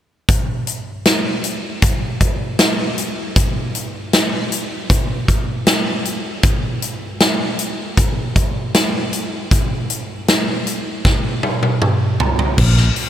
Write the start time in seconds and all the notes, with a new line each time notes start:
0.29 kick, closed hi-hat
0.67 closed hi-hat
1.05 snare, closed hi-hat
1.44 closed hi-hat
1.82 kick, closed hi-hat
2.21 kick, closed hi-hat
2.59 snare, closed hi-hat
2.98 closed hi-hat
3.36 kick, closed hi-hat
3.75 closed hi-hat
4.13 snare, closed hi-hat
4.52 closed hi-hat
4.90 kick, closed hi-hat
5.28 kick, closed hi-hat
5.67 snare, closed hi-hat
6.05 closed hi-hat
6.43 kick, closed hi-hat
6.82 closed hi-hat
7.20 snare, closed hi-hat
7.59 closed hi-hat
7.97 kick, closed hi-hat
8.36 kick, closed hi-hat
8.74 snare, closed hi-hat
9.13 closed hi-hat
9.51 kick, closed hi-hat
9.90 closed hi-hat
10.28 snare, closed hi-hat
10.67 closed hi-hat
11.05 kick, snare
11.43 high tom
11.63 high tom
11.82 mid tom
12.20 floor tom
12.39 floor tom
12.58 A#1, kick, crash
12.77 snare
12.96 open hi-hat